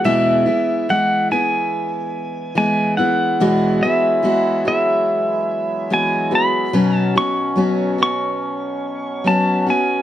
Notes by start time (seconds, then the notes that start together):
0.04 E2 B2 E3 G#3 B3 E4 E5
0.46 E3 G#3 B3 E4
0.89 E3 G#3 B3 E4 F#5
1.31 E3 G#3 B3 E4 G#5
2.55 E3 G#3 B3 E4 G#5
2.97 E3 G#3 B3 E4 F#5
3.40 E2 B2 E3 F#3 G#3 B3 E4 F#4
3.83 E3 G#3 B3 F#4 E5
4.23 E3 G#3 B3 F#4
4.65 E3 G#3 B3 F#4 E5
5.90 E3 G#3 B3 F#4 G#5
6.31 E3 G#3 B3 F#4
6.35 B5
6.73 B2 F#3 B3 C#4 F#4
6.96 A5
7.16 B3 C#4 F#4 C#6
7.56 F#3 B3 C#4 F#4
7.98 B3 C#4 F#4
8.03 C#6
9.24 F#3 B3 C#4 F#4 A5
9.66 B3 C#4 F#4 G#5